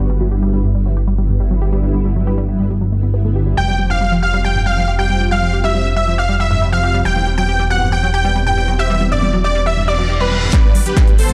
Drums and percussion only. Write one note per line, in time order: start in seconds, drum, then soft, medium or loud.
10.53 kick loud
10.53 snare soft
10.53 closed hi-hat medium
10.75 open hi-hat loud
10.86 closed hi-hat medium
10.97 kick loud
10.97 snare soft
10.97 closed hi-hat medium
11.07 closed hi-hat soft
11.18 open hi-hat loud
11.29 closed hi-hat medium